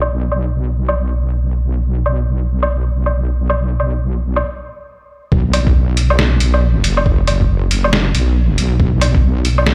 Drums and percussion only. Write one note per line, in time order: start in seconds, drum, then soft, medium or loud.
0.01 low woodblock medium
0.32 low woodblock soft
0.88 low woodblock medium
2.06 low woodblock medium
2.63 low woodblock medium
3.06 low woodblock medium
3.50 low woodblock medium
3.80 low woodblock soft
4.36 low woodblock medium
5.32 kick loud
5.53 closed hi-hat medium
5.53 low woodblock medium
5.67 kick loud
5.97 closed hi-hat medium
6.10 low woodblock medium
6.19 snare loud
6.40 closed hi-hat medium
6.54 low woodblock medium
6.84 closed hi-hat medium
6.97 low woodblock medium
7.06 kick loud
7.27 closed hi-hat medium
7.27 low woodblock soft
7.41 kick medium
7.71 closed hi-hat medium
7.84 low woodblock medium
7.93 snare loud
8.15 closed hi-hat medium
8.58 closed hi-hat medium
8.80 kick loud
9.01 closed hi-hat medium
9.01 low woodblock medium
9.15 kick loud
9.45 closed hi-hat medium
9.58 low woodblock medium
9.66 snare loud